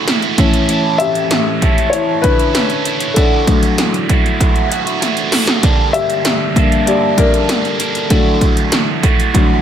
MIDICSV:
0, 0, Header, 1, 4, 480
1, 0, Start_track
1, 0, Key_signature, 2, "major"
1, 0, Tempo, 617729
1, 538, Time_signature, 4, 2, 24, 8
1, 7474, End_track
2, 0, Start_track
2, 0, Title_t, "Overdriven electric guitar"
2, 0, Program_c, 0, 29
2, 49, Note_on_c, 0, 52, 74
2, 58, Note_on_c, 0, 57, 81
2, 65, Note_on_c, 0, 64, 82
2, 75, Note_on_c, 0, 66, 80
2, 277, Note_off_c, 0, 57, 0
2, 283, Note_off_c, 0, 52, 0
2, 286, Note_on_c, 0, 57, 72
2, 296, Note_off_c, 0, 64, 0
2, 300, Note_on_c, 0, 61, 69
2, 306, Note_on_c, 0, 64, 73
2, 307, Note_off_c, 0, 66, 0
2, 312, Note_on_c, 0, 69, 75
2, 528, Note_on_c, 0, 45, 101
2, 529, Note_off_c, 0, 57, 0
2, 531, Note_off_c, 0, 61, 0
2, 535, Note_on_c, 0, 52, 94
2, 537, Note_off_c, 0, 64, 0
2, 538, Note_on_c, 0, 57, 101
2, 540, Note_off_c, 0, 69, 0
2, 540, Note_on_c, 0, 61, 113
2, 546, Note_on_c, 0, 64, 111
2, 550, Note_on_c, 0, 69, 107
2, 1246, Note_off_c, 0, 57, 0
2, 1249, Note_on_c, 0, 57, 73
2, 1253, Note_off_c, 0, 45, 0
2, 1255, Note_off_c, 0, 61, 0
2, 1264, Note_on_c, 0, 61, 70
2, 1266, Note_off_c, 0, 64, 0
2, 1269, Note_on_c, 0, 64, 76
2, 1273, Note_off_c, 0, 69, 0
2, 1276, Note_on_c, 0, 69, 84
2, 1729, Note_off_c, 0, 57, 0
2, 1732, Note_off_c, 0, 61, 0
2, 1732, Note_on_c, 0, 57, 66
2, 1742, Note_on_c, 0, 61, 78
2, 1748, Note_off_c, 0, 64, 0
2, 1752, Note_on_c, 0, 64, 82
2, 1758, Note_off_c, 0, 69, 0
2, 1761, Note_on_c, 0, 69, 81
2, 1842, Note_off_c, 0, 69, 0
2, 1852, Note_on_c, 0, 69, 62
2, 1854, Note_off_c, 0, 64, 0
2, 1855, Note_off_c, 0, 57, 0
2, 1860, Note_off_c, 0, 61, 0
2, 1863, Note_on_c, 0, 64, 60
2, 1872, Note_on_c, 0, 61, 60
2, 1881, Note_on_c, 0, 57, 52
2, 1960, Note_off_c, 0, 57, 0
2, 1969, Note_on_c, 0, 57, 70
2, 1972, Note_off_c, 0, 61, 0
2, 1975, Note_off_c, 0, 69, 0
2, 1977, Note_off_c, 0, 64, 0
2, 1982, Note_on_c, 0, 61, 82
2, 1987, Note_on_c, 0, 64, 79
2, 1996, Note_on_c, 0, 69, 86
2, 2202, Note_off_c, 0, 57, 0
2, 2209, Note_off_c, 0, 61, 0
2, 2211, Note_on_c, 0, 57, 68
2, 2217, Note_off_c, 0, 64, 0
2, 2218, Note_on_c, 0, 61, 78
2, 2226, Note_on_c, 0, 64, 79
2, 2227, Note_off_c, 0, 69, 0
2, 2236, Note_on_c, 0, 69, 73
2, 2452, Note_off_c, 0, 52, 0
2, 2455, Note_off_c, 0, 57, 0
2, 2456, Note_on_c, 0, 50, 94
2, 2458, Note_off_c, 0, 61, 0
2, 2459, Note_on_c, 0, 52, 93
2, 2460, Note_off_c, 0, 64, 0
2, 2463, Note_on_c, 0, 57, 99
2, 2467, Note_off_c, 0, 69, 0
2, 2469, Note_on_c, 0, 64, 103
2, 2474, Note_on_c, 0, 66, 111
2, 3162, Note_off_c, 0, 52, 0
2, 3172, Note_on_c, 0, 52, 68
2, 3178, Note_off_c, 0, 57, 0
2, 3181, Note_off_c, 0, 64, 0
2, 3181, Note_on_c, 0, 57, 61
2, 3186, Note_off_c, 0, 66, 0
2, 3190, Note_on_c, 0, 64, 75
2, 3195, Note_off_c, 0, 50, 0
2, 3197, Note_on_c, 0, 66, 74
2, 3638, Note_off_c, 0, 52, 0
2, 3648, Note_on_c, 0, 52, 66
2, 3653, Note_off_c, 0, 57, 0
2, 3656, Note_off_c, 0, 64, 0
2, 3656, Note_on_c, 0, 57, 73
2, 3664, Note_off_c, 0, 66, 0
2, 3665, Note_on_c, 0, 64, 66
2, 3673, Note_on_c, 0, 66, 82
2, 3760, Note_off_c, 0, 66, 0
2, 3769, Note_on_c, 0, 66, 61
2, 3773, Note_off_c, 0, 52, 0
2, 3775, Note_off_c, 0, 64, 0
2, 3777, Note_off_c, 0, 57, 0
2, 3785, Note_on_c, 0, 64, 56
2, 3796, Note_on_c, 0, 57, 49
2, 3889, Note_on_c, 0, 52, 68
2, 3893, Note_off_c, 0, 57, 0
2, 3894, Note_off_c, 0, 66, 0
2, 3902, Note_off_c, 0, 64, 0
2, 3903, Note_on_c, 0, 57, 74
2, 3910, Note_on_c, 0, 64, 70
2, 3918, Note_on_c, 0, 66, 74
2, 4125, Note_off_c, 0, 52, 0
2, 4133, Note_off_c, 0, 57, 0
2, 4135, Note_on_c, 0, 52, 61
2, 4140, Note_off_c, 0, 64, 0
2, 4142, Note_on_c, 0, 57, 64
2, 4148, Note_off_c, 0, 66, 0
2, 4150, Note_on_c, 0, 64, 71
2, 4160, Note_on_c, 0, 66, 82
2, 4376, Note_on_c, 0, 43, 106
2, 4377, Note_off_c, 0, 52, 0
2, 4378, Note_on_c, 0, 50, 96
2, 4380, Note_off_c, 0, 57, 0
2, 4384, Note_off_c, 0, 64, 0
2, 4385, Note_on_c, 0, 55, 107
2, 4388, Note_on_c, 0, 58, 100
2, 4389, Note_off_c, 0, 66, 0
2, 4389, Note_on_c, 0, 62, 98
2, 4394, Note_on_c, 0, 69, 102
2, 5080, Note_off_c, 0, 55, 0
2, 5089, Note_on_c, 0, 55, 60
2, 5094, Note_off_c, 0, 58, 0
2, 5097, Note_off_c, 0, 43, 0
2, 5104, Note_on_c, 0, 58, 72
2, 5107, Note_off_c, 0, 62, 0
2, 5110, Note_on_c, 0, 62, 70
2, 5112, Note_off_c, 0, 69, 0
2, 5119, Note_on_c, 0, 69, 75
2, 5565, Note_off_c, 0, 55, 0
2, 5572, Note_off_c, 0, 58, 0
2, 5575, Note_on_c, 0, 55, 68
2, 5581, Note_on_c, 0, 58, 70
2, 5591, Note_off_c, 0, 62, 0
2, 5594, Note_on_c, 0, 62, 67
2, 5596, Note_off_c, 0, 69, 0
2, 5599, Note_on_c, 0, 69, 76
2, 5678, Note_off_c, 0, 69, 0
2, 5687, Note_on_c, 0, 69, 66
2, 5692, Note_off_c, 0, 62, 0
2, 5697, Note_off_c, 0, 55, 0
2, 5700, Note_off_c, 0, 58, 0
2, 5702, Note_on_c, 0, 62, 60
2, 5709, Note_on_c, 0, 58, 55
2, 5714, Note_on_c, 0, 55, 50
2, 5808, Note_off_c, 0, 55, 0
2, 5813, Note_off_c, 0, 69, 0
2, 5816, Note_off_c, 0, 58, 0
2, 5817, Note_on_c, 0, 55, 66
2, 5820, Note_off_c, 0, 62, 0
2, 5825, Note_on_c, 0, 58, 70
2, 5833, Note_on_c, 0, 62, 71
2, 5843, Note_on_c, 0, 69, 79
2, 6040, Note_off_c, 0, 55, 0
2, 6049, Note_on_c, 0, 55, 70
2, 6053, Note_off_c, 0, 58, 0
2, 6060, Note_off_c, 0, 62, 0
2, 6063, Note_on_c, 0, 58, 71
2, 6069, Note_off_c, 0, 69, 0
2, 6070, Note_on_c, 0, 62, 75
2, 6078, Note_on_c, 0, 69, 82
2, 6290, Note_off_c, 0, 50, 0
2, 6293, Note_off_c, 0, 55, 0
2, 6293, Note_on_c, 0, 50, 97
2, 6296, Note_on_c, 0, 52, 105
2, 6299, Note_off_c, 0, 58, 0
2, 6302, Note_on_c, 0, 57, 101
2, 6303, Note_off_c, 0, 62, 0
2, 6306, Note_on_c, 0, 64, 104
2, 6307, Note_off_c, 0, 69, 0
2, 6310, Note_on_c, 0, 66, 101
2, 7006, Note_off_c, 0, 52, 0
2, 7010, Note_on_c, 0, 52, 71
2, 7016, Note_off_c, 0, 50, 0
2, 7019, Note_off_c, 0, 57, 0
2, 7022, Note_on_c, 0, 57, 72
2, 7024, Note_off_c, 0, 66, 0
2, 7027, Note_off_c, 0, 64, 0
2, 7030, Note_on_c, 0, 64, 66
2, 7038, Note_on_c, 0, 66, 78
2, 7474, Note_off_c, 0, 52, 0
2, 7474, Note_off_c, 0, 57, 0
2, 7474, Note_off_c, 0, 64, 0
2, 7474, Note_off_c, 0, 66, 0
2, 7474, End_track
3, 0, Start_track
3, 0, Title_t, "Felt piano"
3, 0, Program_c, 1, 0
3, 0, Control_c, 1, 64, 127
3, 0, Note_on_c, 1, 50, 59
3, 0, Note_on_c, 1, 54, 52
3, 0, Note_on_c, 1, 57, 66
3, 0, Note_on_c, 1, 62, 63
3, 0, Note_on_c, 1, 69, 76
3, 266, Note_off_c, 1, 50, 0
3, 269, Note_off_c, 1, 54, 0
3, 271, Note_off_c, 1, 57, 0
3, 294, Note_on_c, 1, 45, 60
3, 302, Note_on_c, 1, 52, 58
3, 306, Note_on_c, 1, 61, 69
3, 307, Control_c, 1, 64, 0
3, 308, Note_off_c, 1, 69, 0
3, 313, Note_off_c, 1, 62, 0
3, 422, Control_c, 1, 64, 127
3, 764, Note_on_c, 1, 76, 119
3, 780, Note_on_c, 1, 67, 85
3, 1468, Note_off_c, 1, 67, 0
3, 1474, Note_on_c, 1, 73, 101
3, 1502, Note_on_c, 1, 64, 77
3, 1513, Note_off_c, 1, 76, 0
3, 1531, Note_off_c, 1, 73, 0
3, 1555, Note_off_c, 1, 64, 0
3, 1723, Note_on_c, 1, 71, 113
3, 1750, Note_on_c, 1, 50, 79
3, 2185, Note_off_c, 1, 45, 0
3, 2189, Note_off_c, 1, 52, 0
3, 2191, Note_off_c, 1, 61, 0
3, 2433, Note_off_c, 1, 50, 0
3, 2440, Note_on_c, 1, 69, 85
3, 2469, Control_c, 1, 64, 0
3, 2469, Note_on_c, 1, 62, 63
3, 2472, Note_off_c, 1, 71, 0
3, 2584, Control_c, 1, 64, 127
3, 2703, Note_on_c, 1, 50, 61
3, 2706, Note_on_c, 1, 54, 53
3, 2711, Note_on_c, 1, 57, 69
3, 3020, Note_off_c, 1, 50, 0
3, 3022, Note_off_c, 1, 54, 0
3, 3024, Note_off_c, 1, 57, 0
3, 3858, Note_off_c, 1, 69, 0
3, 3873, Note_off_c, 1, 62, 0
3, 4388, Control_c, 1, 64, 0
3, 4538, Control_c, 1, 64, 127
3, 4609, Note_on_c, 1, 76, 117
3, 4622, Note_on_c, 1, 67, 91
3, 5094, Note_on_c, 1, 43, 58
3, 5100, Note_on_c, 1, 50, 52
3, 5100, Note_on_c, 1, 58, 62
3, 5309, Note_off_c, 1, 67, 0
3, 5331, Note_on_c, 1, 74, 99
3, 5340, Note_on_c, 1, 67, 78
3, 5355, Note_off_c, 1, 76, 0
3, 5386, Note_off_c, 1, 74, 0
3, 5393, Note_off_c, 1, 67, 0
3, 5582, Note_on_c, 1, 70, 97
3, 5592, Note_on_c, 1, 62, 76
3, 6265, Note_off_c, 1, 43, 0
3, 6268, Note_off_c, 1, 50, 0
3, 6268, Note_off_c, 1, 58, 0
3, 6274, Note_off_c, 1, 62, 0
3, 6293, Note_on_c, 1, 50, 59
3, 6297, Note_on_c, 1, 54, 55
3, 6297, Note_on_c, 1, 69, 83
3, 6303, Note_on_c, 1, 62, 66
3, 6304, Note_on_c, 1, 57, 62
3, 6309, Control_c, 1, 64, 0
3, 6322, Note_off_c, 1, 70, 0
3, 6447, Control_c, 1, 64, 127
3, 6615, Note_off_c, 1, 50, 0
3, 6617, Note_off_c, 1, 54, 0
3, 6621, Note_off_c, 1, 57, 0
3, 7258, Note_on_c, 1, 50, 51
3, 7261, Note_on_c, 1, 54, 45
3, 7263, Note_on_c, 1, 57, 54
3, 7474, Note_off_c, 1, 50, 0
3, 7474, Note_off_c, 1, 54, 0
3, 7474, Note_off_c, 1, 57, 0
3, 7474, Note_off_c, 1, 62, 0
3, 7474, Note_off_c, 1, 69, 0
3, 7474, End_track
4, 0, Start_track
4, 0, Title_t, "Drums"
4, 58, Note_on_c, 9, 38, 124
4, 60, Note_on_c, 9, 42, 99
4, 136, Note_off_c, 9, 38, 0
4, 138, Note_off_c, 9, 42, 0
4, 174, Note_on_c, 9, 42, 34
4, 252, Note_off_c, 9, 42, 0
4, 296, Note_on_c, 9, 36, 110
4, 296, Note_on_c, 9, 42, 93
4, 374, Note_off_c, 9, 36, 0
4, 374, Note_off_c, 9, 42, 0
4, 416, Note_on_c, 9, 42, 60
4, 494, Note_off_c, 9, 42, 0
4, 535, Note_on_c, 9, 42, 89
4, 613, Note_off_c, 9, 42, 0
4, 776, Note_on_c, 9, 42, 73
4, 853, Note_off_c, 9, 42, 0
4, 897, Note_on_c, 9, 42, 56
4, 974, Note_off_c, 9, 42, 0
4, 1016, Note_on_c, 9, 42, 102
4, 1017, Note_on_c, 9, 38, 118
4, 1094, Note_off_c, 9, 42, 0
4, 1095, Note_off_c, 9, 38, 0
4, 1260, Note_on_c, 9, 36, 86
4, 1260, Note_on_c, 9, 42, 82
4, 1338, Note_off_c, 9, 36, 0
4, 1338, Note_off_c, 9, 42, 0
4, 1383, Note_on_c, 9, 42, 46
4, 1461, Note_off_c, 9, 42, 0
4, 1499, Note_on_c, 9, 42, 97
4, 1577, Note_off_c, 9, 42, 0
4, 1739, Note_on_c, 9, 36, 100
4, 1739, Note_on_c, 9, 42, 82
4, 1816, Note_off_c, 9, 36, 0
4, 1816, Note_off_c, 9, 42, 0
4, 1861, Note_on_c, 9, 42, 50
4, 1939, Note_off_c, 9, 42, 0
4, 1978, Note_on_c, 9, 38, 126
4, 1980, Note_on_c, 9, 42, 106
4, 2056, Note_off_c, 9, 38, 0
4, 2058, Note_off_c, 9, 42, 0
4, 2096, Note_on_c, 9, 42, 36
4, 2174, Note_off_c, 9, 42, 0
4, 2218, Note_on_c, 9, 42, 91
4, 2296, Note_off_c, 9, 42, 0
4, 2335, Note_on_c, 9, 42, 61
4, 2412, Note_off_c, 9, 42, 0
4, 2458, Note_on_c, 9, 42, 86
4, 2460, Note_on_c, 9, 36, 106
4, 2535, Note_off_c, 9, 42, 0
4, 2537, Note_off_c, 9, 36, 0
4, 2699, Note_on_c, 9, 36, 104
4, 2701, Note_on_c, 9, 42, 77
4, 2777, Note_off_c, 9, 36, 0
4, 2778, Note_off_c, 9, 42, 0
4, 2818, Note_on_c, 9, 42, 57
4, 2896, Note_off_c, 9, 42, 0
4, 2939, Note_on_c, 9, 42, 105
4, 2940, Note_on_c, 9, 38, 111
4, 3017, Note_off_c, 9, 42, 0
4, 3018, Note_off_c, 9, 38, 0
4, 3063, Note_on_c, 9, 42, 38
4, 3141, Note_off_c, 9, 42, 0
4, 3181, Note_on_c, 9, 36, 90
4, 3182, Note_on_c, 9, 42, 77
4, 3259, Note_off_c, 9, 36, 0
4, 3260, Note_off_c, 9, 42, 0
4, 3309, Note_on_c, 9, 42, 44
4, 3387, Note_off_c, 9, 42, 0
4, 3422, Note_on_c, 9, 36, 99
4, 3425, Note_on_c, 9, 42, 99
4, 3500, Note_off_c, 9, 36, 0
4, 3503, Note_off_c, 9, 42, 0
4, 3541, Note_on_c, 9, 42, 34
4, 3618, Note_off_c, 9, 42, 0
4, 3665, Note_on_c, 9, 42, 88
4, 3742, Note_off_c, 9, 42, 0
4, 3784, Note_on_c, 9, 42, 50
4, 3861, Note_off_c, 9, 42, 0
4, 3901, Note_on_c, 9, 38, 60
4, 3903, Note_on_c, 9, 42, 100
4, 3979, Note_off_c, 9, 38, 0
4, 3981, Note_off_c, 9, 42, 0
4, 4016, Note_on_c, 9, 42, 35
4, 4094, Note_off_c, 9, 42, 0
4, 4135, Note_on_c, 9, 38, 97
4, 4135, Note_on_c, 9, 46, 91
4, 4213, Note_off_c, 9, 38, 0
4, 4213, Note_off_c, 9, 46, 0
4, 4253, Note_on_c, 9, 42, 60
4, 4254, Note_on_c, 9, 38, 107
4, 4330, Note_off_c, 9, 42, 0
4, 4332, Note_off_c, 9, 38, 0
4, 4377, Note_on_c, 9, 36, 115
4, 4377, Note_on_c, 9, 42, 90
4, 4454, Note_off_c, 9, 42, 0
4, 4455, Note_off_c, 9, 36, 0
4, 4618, Note_on_c, 9, 42, 74
4, 4695, Note_off_c, 9, 42, 0
4, 4737, Note_on_c, 9, 42, 53
4, 4815, Note_off_c, 9, 42, 0
4, 4855, Note_on_c, 9, 42, 104
4, 4857, Note_on_c, 9, 38, 124
4, 4933, Note_off_c, 9, 42, 0
4, 4934, Note_off_c, 9, 38, 0
4, 5098, Note_on_c, 9, 36, 94
4, 5102, Note_on_c, 9, 42, 79
4, 5176, Note_off_c, 9, 36, 0
4, 5180, Note_off_c, 9, 42, 0
4, 5223, Note_on_c, 9, 42, 49
4, 5300, Note_off_c, 9, 42, 0
4, 5341, Note_on_c, 9, 42, 100
4, 5419, Note_off_c, 9, 42, 0
4, 5577, Note_on_c, 9, 36, 93
4, 5579, Note_on_c, 9, 42, 90
4, 5655, Note_off_c, 9, 36, 0
4, 5656, Note_off_c, 9, 42, 0
4, 5702, Note_on_c, 9, 42, 51
4, 5780, Note_off_c, 9, 42, 0
4, 5820, Note_on_c, 9, 38, 117
4, 5822, Note_on_c, 9, 42, 108
4, 5898, Note_off_c, 9, 38, 0
4, 5899, Note_off_c, 9, 42, 0
4, 5944, Note_on_c, 9, 42, 35
4, 6022, Note_off_c, 9, 42, 0
4, 6059, Note_on_c, 9, 42, 96
4, 6137, Note_off_c, 9, 42, 0
4, 6178, Note_on_c, 9, 42, 60
4, 6256, Note_off_c, 9, 42, 0
4, 6297, Note_on_c, 9, 36, 115
4, 6297, Note_on_c, 9, 42, 83
4, 6374, Note_off_c, 9, 42, 0
4, 6375, Note_off_c, 9, 36, 0
4, 6537, Note_on_c, 9, 36, 98
4, 6539, Note_on_c, 9, 42, 76
4, 6615, Note_off_c, 9, 36, 0
4, 6617, Note_off_c, 9, 42, 0
4, 6659, Note_on_c, 9, 42, 60
4, 6736, Note_off_c, 9, 42, 0
4, 6776, Note_on_c, 9, 42, 105
4, 6777, Note_on_c, 9, 38, 115
4, 6853, Note_off_c, 9, 42, 0
4, 6855, Note_off_c, 9, 38, 0
4, 7019, Note_on_c, 9, 36, 91
4, 7021, Note_on_c, 9, 42, 86
4, 7097, Note_off_c, 9, 36, 0
4, 7098, Note_off_c, 9, 42, 0
4, 7146, Note_on_c, 9, 42, 49
4, 7224, Note_off_c, 9, 42, 0
4, 7261, Note_on_c, 9, 36, 101
4, 7264, Note_on_c, 9, 42, 100
4, 7339, Note_off_c, 9, 36, 0
4, 7341, Note_off_c, 9, 42, 0
4, 7474, End_track
0, 0, End_of_file